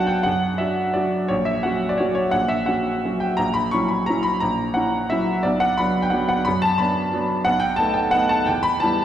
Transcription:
Already playing: B1 F#3 D4 F#4 F#5 G5 A5
0.07 G5
0.23 F#2 F#5
0.58 D4 F#4 E5
0.94 F#3 D4 F#4 D5
1.28 A#1 C#5
1.45 E5
1.63 F#3 C#4 F#4 F#5
1.89 D5
1.98 F#3 C#4 F#4 C#5
2.15 C#5
2.31 A#1 F#5
2.48 E5
2.66 C#4 F#4 F#5
3.05 F#3 C#4 F#4
3.20 G5
3.37 A#1 A#5
3.54 B5
3.71 F#3 C#4 E4 C#6
3.88 B5
4.06 F#3 C#4 E4 A#5
4.23 B5
4.40 A#1 A#5
4.74 C#4 E4 F#5
5.10 F#3 C#4 E4 E5
5.43 B1 D5
5.60 F#5
5.78 F#3 B3 D4 B5
6.02 G5
6.10 F#3 B3 D4 F#5
6.29 F#5
6.45 F#2 B5
6.62 A5
6.78 B3 D4 B5
7.13 F#3 B3 D4
7.45 B1 F#5
7.60 G5
7.76 A3 B3 D#4 A5
7.93 G5
8.11 A3 B3 D#4 F#5
8.29 A5
8.46 E2 G5
8.63 B5
8.80 G3 B3 E4 A5

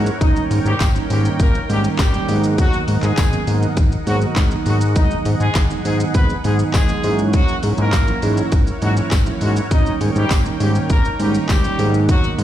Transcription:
Already playing: G#2 E4 A#4 C#5 F#5
0.06 shaker
0.21 G#1 D#3 G3 A#3 C#4 D#4 D#5 G5, kick, closed hi-hat, shaker
0.36 shaker
0.50 G#2, open hi-hat, shaker
0.65 G#2 G3 G4, shaker
0.80 G#1, kick, snare, clap, closed hi-hat, tambourine, shaker
0.95 D#3 G3 A#3 C#4 D#4, shaker
1.10 G#2 D#3 G3 A#3 C#4 D#4 G4, open hi-hat, shaker
1.25 shaker
1.40 G#1 A#3 A#4, kick, closed hi-hat, shaker
1.55 shaker
1.69 G#2 D#3 G3 A#3 C#4 D#4 G4, open hi-hat, shaker
1.84 shaker
1.99 G#1 G3 G4, kick, snare, clap, closed hi-hat, tambourine, shaker
2.14 D#3 G3 A#3 C#4 D#4, shaker
2.28 G#2 D#3 F#3 A#3 B3 D#4 D#5 F#5, open hi-hat, shaker
2.44 shaker
2.58 F#3 F#4, kick, closed hi-hat, shaker
2.73 shaker
2.88 G#2, open hi-hat, shaker
3.03 G#2 G#3 G#4, clap, shaker
3.17 G#1, kick, snare, clap, closed hi-hat, tambourine, shaker
3.32 D#3 F#3 A#3 B3 C#4, shaker
3.47 G#2 D#3 F#3 A#3 B3 D#4, open hi-hat, shaker
3.62 shaker
3.77 G#1, kick, closed hi-hat, shaker
3.92 shaker
4.07 G#2 D#3 F#3 A#3 B3 F#4, open hi-hat, shaker
4.21 shaker
4.36 G#1, kick, snare, clap, closed hi-hat, tambourine, shaker
4.51 D#3 F#3 A#3 B3 D#4, shaker
4.66 G#2 F#3 F#4, open hi-hat, shaker
4.81 shaker
4.96 G#1 D#3 F#3 G#3 B3 D#4 G#4 D#5, kick, closed hi-hat, shaker
5.11 shaker
5.25 G#2, open hi-hat, shaker
5.40 G#2 G#3 G#4, shaker
5.55 G#1, kick, snare, clap, closed hi-hat, tambourine, shaker
5.70 D#3 F#3 G#3 B3 D#4, shaker
5.85 G#2 D#3 F#3 G#3 B3 D#4 G#4, open hi-hat, shaker
6.00 shaker
6.14 G#1 B3 B4, kick, closed hi-hat, shaker
6.30 shaker
6.44 G#2 D#3 F#3 G#3 B3 D#4 G#4, open hi-hat, shaker
6.59 shaker
6.74 G#1 G#3 G#4, kick, snare, clap, closed hi-hat, tambourine, shaker
6.89 D#3 F#3 G#3 B3 D#4, shaker
7.04 G#2 E3 F#3 A#3 C#4 E4 A#4 C#5, open hi-hat, shaker
7.19 shaker
7.33 F#3 F#4, kick, closed hi-hat, shaker
7.48 shaker
7.63 G#2, open hi-hat, shaker
7.78 G#2 A#3 A#4, shaker
7.93 G#1, kick, snare, clap, closed hi-hat, tambourine, shaker
8.08 E3 F#3 A#3 C#4 E4, shaker
8.22 G#2 E3 F#3 A#3 C#4 E4, open hi-hat, shaker
8.37 shaker
8.52 G#1, kick, closed hi-hat, shaker
8.67 shaker
8.82 G#2 E3 F#3 A#3 C#4 E4 F#4, open hi-hat, shaker
8.97 shaker
9.11 G#1, kick, snare, clap, closed hi-hat, tambourine, shaker
9.26 E3 F#3 A#3 C#4 E4, shaker
9.41 G#2 F#3 F#4, open hi-hat, shaker
9.56 shaker
9.71 G#1 D#3 G3 A#3 C#4 D#4 A#4 D#5 G5, kick, closed hi-hat, shaker
9.86 shaker
10.01 G#2, open hi-hat, shaker
10.16 G#2 G3 G4, shaker
10.30 G#1, kick, snare, clap, closed hi-hat, tambourine, shaker
10.45 D#3 G3 A#3 C#4 D#4, shaker
10.60 G#2 D#3 G3 A#3 C#4 D#4 G4, open hi-hat, shaker
10.75 shaker
10.90 G#1 A#3 A#4, kick, closed hi-hat, shaker
11.05 shaker
11.20 G#2 D#3 G3 A#3 C#4 D#4 G4, open hi-hat, shaker
11.34 shaker
11.49 G#1 G3 G4, kick, snare, clap, closed hi-hat, tambourine, shaker
11.64 D#3 G3 A#3 C#4 D#4, shaker
11.79 G#2 D#3 F#3 A#3 B3 D#4 D#5 F#5, open hi-hat, shaker
11.94 shaker
12.09 F#3 F#4, kick, closed hi-hat, shaker
12.24 shaker
12.38 G#2, open hi-hat, shaker

